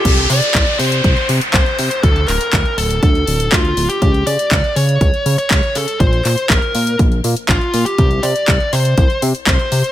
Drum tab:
CC |x---------------|----------------|----------------|----------------|
HH |xxoxxxoxxxoxxxox|xxoxxxoxxxoxxxox|xxoxxxoxxxoxxxox|xxoxxxoxxxoxxxox|
CP |----x-------x---|--x-x-------x---|----x-------x---|--x-x-------x---|
BD |o---o---o---o---|o---o---o---o---|o---o---o---o---|o---o---o---o---|

CC |----------------|
HH |xxoxxxoxxxoxxxox|
CP |----x-------x---|
BD |o---o---o---o---|